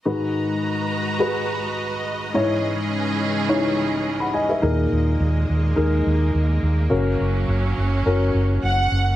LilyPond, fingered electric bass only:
\new Staff \with { instrumentName = "Fingered electric bass" } { \clef bass \time 4/4 \key gis \minor \tempo 4 = 105 r1 | r1 | dis,8 dis,8 dis,8 dis,8 dis,8 dis,8 dis,8 dis,8 | fis,,8 fis,,8 fis,,8 fis,,8 fis,,8 fis,,8 fis,,8 fis,,8 | }